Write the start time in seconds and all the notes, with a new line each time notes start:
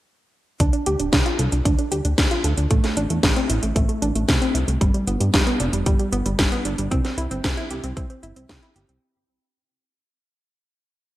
0.60 D2 D4, kick, closed hi-hat
0.73 D4, closed hi-hat
0.86 D2 G4, closed hi-hat
0.99 D1 D4, closed hi-hat
1.12 C2 D4, kick, snare, closed hi-hat
1.26 F4, closed hi-hat
1.39 C2 A4, closed hi-hat
1.52 C2 D4, closed hi-hat
1.65 D2 D4, kick, closed hi-hat
1.79 D4, closed hi-hat
1.92 D2 G4, closed hi-hat
2.05 D2 D4, closed hi-hat
2.18 D2 D4, kick, snare, closed hi-hat
2.31 F4, closed hi-hat
2.44 D2 A4, closed hi-hat
2.57 D2 D4, closed hi-hat
2.71 A1 A3, kick, closed hi-hat
2.84 A3, snare, closed hi-hat
2.97 A1 D4, closed hi-hat
3.10 E2 A3, closed hi-hat
3.23 A1 A3, kick, snare, closed hi-hat
3.36 C4, closed hi-hat
3.50 A1 E4, closed hi-hat
3.63 A1 A3, closed hi-hat
3.76 A1 A3, kick, closed hi-hat
3.89 A3, closed hi-hat
4.02 A1 D4, closed hi-hat
4.15 A1 A3, closed hi-hat
4.28 C2 A3, kick, snare, closed hi-hat
4.41 C4, closed hi-hat
4.54 C2 E4, closed hi-hat
4.68 C2 A3, closed hi-hat
4.81 G1 G3, kick, closed hi-hat
4.94 G3, closed hi-hat
5.07 G1 B3, closed hi-hat
5.20 G2 G3, closed hi-hat
5.34 F1 G3, kick, snare, closed hi-hat
5.47 B3, closed hi-hat
5.60 F1 D4, closed hi-hat
5.73 F1 G3, closed hi-hat
5.86 G1 G3, kick, closed hi-hat
5.99 G3, closed hi-hat
6.12 G1 B3, closed hi-hat
6.26 G1 G3, closed hi-hat
6.39 G1 G3, kick, snare, closed hi-hat
6.52 B3, closed hi-hat
6.65 G1 D4, closed hi-hat
6.78 G1 G3, closed hi-hat
6.91 C2 C4, kick, closed hi-hat
7.05 C4, snare, closed hi-hat
7.18 C2 E4, closed hi-hat
7.31 G1 C4, closed hi-hat
7.44 C2 C4, kick, snare, closed hi-hat
7.57 E4, closed hi-hat
7.70 C2 G4, closed hi-hat
7.84 C2 C4, closed hi-hat
7.97 C2 C4, kick, closed hi-hat
8.10 C4, closed hi-hat
8.23 G1 E4, closed hi-hat
8.36 C2 C4, closed hi-hat
8.49 C2 C4, kick, snare, closed hi-hat
8.62 E4, closed hi-hat
8.76 G1 G4, closed hi-hat
8.89 C2 C4, closed hi-hat